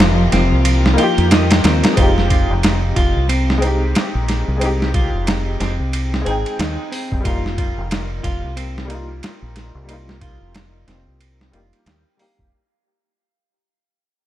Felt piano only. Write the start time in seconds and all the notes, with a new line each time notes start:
Already playing: A#3 D#4 F4 G4
0.94 A#3 D#4
1.00 F4 G4
1.93 G#3 C4
1.99 D#4 G4
3.58 G#3 C4
3.64 D#4 G4
4.57 G#3 C4
4.63 D#4 G4
6.22 G#3 C4
6.28 D#4 G5
7.21 G3 A#3
7.26 D#4 F4
8.85 G3 A#3
8.91 D#4 F4
9.84 G3 A#3
9.90 D#4 F4
11.51 G3 A#3 D#4
11.56 G4
12.17 G3 A#3 D#4
12.22 G4